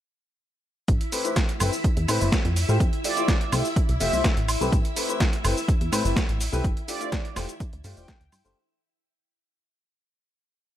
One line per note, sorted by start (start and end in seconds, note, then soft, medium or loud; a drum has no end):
0.88 0.99 A1 loud
0.88 8.57 E4 medium
0.88 8.57 E5 medium
0.88 kick loud
0.88 closed hi-hat medium
0.88 cabasa soft
1.01 closed hi-hat medium
1.12 1.22 A3 medium
1.12 1.22 C4 medium
1.12 1.22 E4 medium
1.12 1.22 G4 medium
1.12 1.22 B4 medium
1.12 open hi-hat loud
1.12 cabasa medium
1.24 1.36 A3 medium
1.24 1.36 C4 medium
1.24 1.36 E4 medium
1.24 1.36 G4 medium
1.24 1.36 B4 medium
1.24 closed hi-hat soft
1.24 cabasa soft
1.36 kick loud
1.36 snare loud
1.36 closed hi-hat medium
1.36 cabasa soft
1.49 closed hi-hat medium
1.60 1.71 G1 medium
1.60 1.68 A3 medium
1.60 1.68 C4 medium
1.60 1.68 E4 medium
1.60 1.68 G4 medium
1.60 1.68 B4 medium
1.60 open hi-hat medium
1.60 cabasa medium
1.60 high woodblock medium
1.73 cabasa soft
1.84 1.94 E2 soft
1.84 kick loud
1.84 closed hi-hat medium
1.84 cabasa soft
1.97 2.07 E2 loud
1.97 closed hi-hat medium
2.08 2.19 A2 loud
2.08 2.18 A3 loud
2.08 2.18 C4 medium
2.08 2.18 E4 medium
2.08 2.18 G4 medium
2.08 2.18 B4 loud
2.08 open hi-hat loud
2.08 cabasa medium
2.08 high woodblock medium
2.20 2.31 G1 medium
2.20 2.28 A3 medium
2.20 2.28 C4 medium
2.20 2.28 E4 medium
2.20 2.28 G4 medium
2.20 2.28 B4 medium
2.20 cabasa soft
2.32 kick loud
2.32 snare loud
2.32 closed hi-hat medium
2.32 cabasa soft
2.45 2.65 F2 loud
2.45 closed hi-hat medium
2.56 open hi-hat loud
2.56 cabasa medium
2.68 2.79 A2 loud
2.68 2.80 A3 loud
2.68 2.80 E4 medium
2.68 2.80 F4 medium
2.68 2.80 G4 medium
2.68 2.80 C5 loud
2.68 cabasa soft
2.80 2.91 F2 medium
2.80 kick loud
2.80 closed hi-hat medium
2.80 cabasa soft
2.93 closed hi-hat medium
3.04 3.14 A3 medium
3.04 3.14 E4 medium
3.04 3.14 F4 medium
3.04 3.14 G4 medium
3.04 3.14 C5 medium
3.04 3.52 D5 loud
3.04 open hi-hat loud
3.04 cabasa medium
3.16 3.28 A3 medium
3.16 3.28 E4 medium
3.16 3.28 F4 medium
3.16 3.28 G4 medium
3.16 3.28 C5 medium
3.16 closed hi-hat soft
3.16 cabasa soft
3.28 kick loud
3.28 snare loud
3.28 closed hi-hat medium
3.28 cabasa soft
3.41 closed hi-hat medium
3.52 3.63 C2 medium
3.52 3.60 A3 medium
3.52 3.60 E4 medium
3.52 3.60 F4 medium
3.52 3.60 G4 medium
3.52 3.60 C5 medium
3.52 open hi-hat medium
3.52 cabasa medium
3.52 high woodblock medium
3.65 cabasa soft
3.76 kick loud
3.76 closed hi-hat medium
3.76 cabasa soft
3.89 3.99 C2 loud
3.89 closed hi-hat medium
4.00 4.11 F1 loud
4.00 4.10 A3 loud
4.00 4.10 E4 medium
4.00 4.10 F4 medium
4.00 4.10 G4 medium
4.00 4.10 C5 loud
4.00 4.37 E5 loud
4.00 open hi-hat loud
4.00 cabasa medium
4.13 4.23 C2 medium
4.13 4.20 A3 medium
4.13 4.20 E4 medium
4.13 4.20 F4 medium
4.13 4.20 G4 medium
4.13 4.20 C5 medium
4.13 cabasa soft
4.24 kick loud
4.24 snare loud
4.24 closed hi-hat medium
4.24 cabasa soft
4.37 4.57 A1 loud
4.37 closed hi-hat medium
4.48 open hi-hat loud
4.48 cabasa medium
4.48 high woodblock medium
4.61 4.71 C2 loud
4.61 4.72 A3 loud
4.61 4.72 C4 medium
4.61 4.72 E4 medium
4.61 4.72 G4 medium
4.61 4.73 B4 loud
4.61 cabasa soft
4.72 4.83 A1 loud
4.72 kick loud
4.72 closed hi-hat medium
4.72 cabasa soft
4.85 closed hi-hat medium
4.96 5.06 A3 medium
4.96 5.06 C4 medium
4.96 5.06 E4 medium
4.96 5.06 G4 medium
4.96 5.06 B4 medium
4.96 open hi-hat loud
4.96 cabasa medium
5.08 5.20 A3 medium
5.08 5.20 C4 medium
5.08 5.20 E4 medium
5.08 5.20 G4 medium
5.08 5.20 B4 medium
5.08 closed hi-hat soft
5.08 cabasa soft
5.20 kick loud
5.20 snare loud
5.20 closed hi-hat medium
5.20 cabasa soft
5.33 closed hi-hat medium
5.44 5.55 G1 medium
5.44 5.52 A3 medium
5.44 5.52 C4 medium
5.44 5.52 E4 medium
5.44 5.52 G4 medium
5.44 5.52 B4 loud
5.44 open hi-hat loud
5.44 cabasa medium
5.44 high woodblock medium
5.57 cabasa soft
5.68 5.78 E2 soft
5.68 kick loud
5.68 closed hi-hat medium
5.68 cabasa soft
5.81 5.91 E2 loud
5.81 closed hi-hat medium
5.92 6.03 A2 loud
5.92 6.02 A3 loud
5.92 6.02 C4 medium
5.92 6.02 E4 medium
5.92 6.02 G4 medium
5.92 6.02 B4 loud
5.92 open hi-hat loud
5.92 cabasa medium
5.92 high woodblock medium
6.04 6.15 G1 medium
6.04 6.12 A3 medium
6.04 6.12 C4 medium
6.04 6.12 E4 medium
6.04 6.12 G4 medium
6.04 6.12 B4 medium
6.04 cabasa soft
6.16 kick loud
6.16 snare loud
6.16 closed hi-hat medium
6.16 cabasa soft
6.29 6.49 A1 loud
6.29 closed hi-hat medium
6.41 open hi-hat loud
6.41 cabasa medium
6.52 6.63 C2 loud
6.52 6.63 A3 loud
6.52 6.63 C4 medium
6.52 6.63 E4 medium
6.52 6.63 G4 medium
6.52 6.63 B4 loud
6.52 cabasa soft
6.64 kick loud
6.64 closed hi-hat medium
6.64 cabasa soft
6.77 closed hi-hat medium
6.88 6.98 A3 medium
6.88 6.98 D4 medium
6.88 6.98 F4 medium
6.88 6.98 G4 medium
6.88 6.98 C5 medium
6.88 7.36 D5 loud
6.88 open hi-hat loud
6.88 cabasa medium
7.00 7.12 A3 medium
7.00 7.12 D4 medium
7.00 7.12 F4 medium
7.00 7.12 G4 medium
7.00 7.12 C5 medium
7.00 closed hi-hat soft
7.00 cabasa soft
7.12 kick loud
7.12 snare loud
7.12 closed hi-hat medium
7.12 cabasa soft
7.25 closed hi-hat medium
7.36 7.47 F1 medium
7.36 7.44 A3 medium
7.36 7.44 D4 medium
7.36 7.44 F4 medium
7.36 7.44 G4 medium
7.36 7.44 C5 loud
7.36 snare medium
7.36 open hi-hat loud
7.36 cabasa medium
7.36 high woodblock medium
7.49 closed hi-hat soft
7.49 cabasa soft
7.60 kick loud
7.60 closed hi-hat medium
7.60 cabasa soft
7.73 7.83 D2 loud
7.73 closed hi-hat medium
7.84 7.95 G2 loud
7.84 7.94 A3 loud
7.84 7.94 D4 medium
7.84 7.94 F4 medium
7.84 7.94 G4 medium
7.84 7.94 C5 loud
7.84 open hi-hat loud
7.84 cabasa medium
7.97 8.07 F1 medium
7.97 8.04 A3 medium
7.97 8.04 D4 medium
7.97 8.04 F4 medium
7.97 8.04 G4 medium
7.97 8.04 C5 medium
7.97 8.56 G5 loud
7.97 cabasa soft
8.08 kick loud
8.08 snare loud
8.08 closed hi-hat medium
8.08 cabasa soft
8.21 8.31 D2 medium
8.21 closed hi-hat medium
8.32 8.43 G2 medium
8.32 open hi-hat loud
8.32 cabasa medium
8.32 high woodblock medium
8.44 8.55 G1 medium
8.44 8.55 A3 loud
8.44 8.55 D4 medium
8.44 8.55 F4 medium
8.44 8.55 G4 loud
8.44 8.55 C5 loud
8.44 cabasa soft